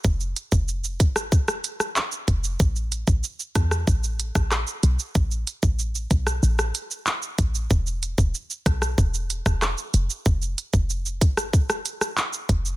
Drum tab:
HH |--x---x---x---x-|--x---x---x---x-|--x---x---x---x-|--x---x---x---x-|
SH |xxxxxxxxxxxxxxxx|xxxxxxxxxxxxxxxx|xxxxxxxxxxxxxxxx|xxxxxxxxxxxxxxxx|
CP |------------x---|------------x---|------------x---|------------x---|
SD |-------r-r-r----|------rr---rr---|-------r-r------|------rr---rr---|
BD |o--o--o-o-----o-|o--o--o-o--o----|o--o--o-------o-|o--o--o-o--o----|

HH |--x---x---x---x-|
SH |xxxxxxxxxxxxxxxx|
CP |------------x---|
SD |-------r-r-r----|
BD |o--o--o-o-----o-|